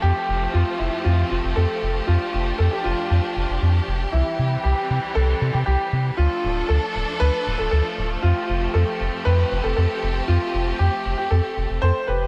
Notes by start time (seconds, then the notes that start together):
Already playing: F3 A3
0.02 F2 C4 G4
0.29 F1
0.53 F2 F4
0.79 F1 E4
1.04 F2 F4
1.30 F1 F4
1.44 F1
1.56 F2 A4
1.83 F1
2.07 F2 D4 F4
2.34 F1
2.59 F2 A4
2.71 G4
2.84 F1 F4
3.11 F2
3.37 F1
3.50 F1
3.62 F2
3.88 F1
4.12 C2 E3 G3 C4 E4
4.39 C3
4.64 C2 G4
4.91 C3
5.15 C2 A4
5.42 C3
5.53 C3 G4
5.66 C2 G4
5.93 C3
6.17 D2 F3 A3 D4 F4 A4
6.44 D1
6.69 D2 A4
6.96 D1
7.20 D2 B4
7.47 D1
7.58 D1 A4
7.71 D2 A4
7.98 D1
8.22 F2 C4 F4 G4
8.50 F1
8.74 F2 A4
9.01 F1
9.25 F2 B4
9.52 F1
9.64 F1 A4
9.77 F2 A4
10.03 F1
10.28 F2 F4
10.54 F1
10.79 F2 G4
11.06 F1
11.18 G4
11.30 F2 A4
11.57 F1
11.70 F1
11.82 F2 A4 C5
12.07 F1 G4 B4